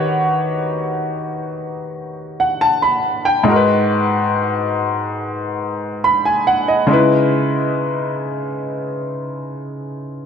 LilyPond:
\new Staff \with { instrumentName = "Grand piano" } { \time 4/4 \key cis \minor \tempo 4 = 70 << { r2 r8. fis''16 a''16 b''8 g''16~ | g''16 r2 r8. b''16 gis''16 fis''16 dis''16~ | dis''16 r2. r8. | } \\ { <dis dis' fis' g' b' cis''>2.~ <dis dis' fis' g' b' cis''>8 r8 | <gis, gis dis' fis' ais' b'>1 | <cis gis dis' e' b'>1 | } >> }